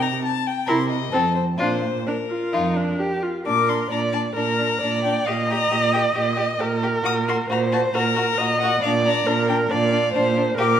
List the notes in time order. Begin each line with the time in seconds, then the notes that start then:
Already playing: C3
0.02 A#5
0.24 A5
0.47 G5
0.66 C3 E4 A#4 C6
0.90 D#5
1.12 F2 C4 A4
1.35 C5
1.58 A#2 D4 F4 C5
2.07 D4 A#4
2.29 F4
2.53 F2 D#4 F4
2.76 D4
3.00 G4
3.23 F4
3.45 A#2 D4 A#4 D6
3.68 D4 C6
3.91 A#2 D4 D5 A#5
4.13 D4 A5
4.35 A#2 D4 A#4 A#5
4.58 D4
4.81 A#2 D4 D5
5.04 D4 G5
5.27 A#2 G4 D#5 F5
5.49 G4 A#5
5.71 A#2 G4
5.93 G4 G5
6.15 A#2 G4 D#5
6.36 G4
6.59 A#2 G4 A#4
6.83 G4
7.04 A#2 F#4 D#6
7.28 F#4 C6
7.50 A#2 F#4 C5 A#5
7.72 F#4 A5
7.94 A#2 F#4 A#4 A#5
8.16 F#4
8.38 A#2 F#4 D#5
8.60 F#4 F#5
8.82 A#2 D4 D5 F5
9.05 D4 A#5
9.27 A#2 D4 A#4
9.49 D4 G5
9.70 A#2 D4 D5 F5
9.92 D4
10.14 A#2 D4 C5
10.37 D4
10.57 A#2 G4 A#4 D6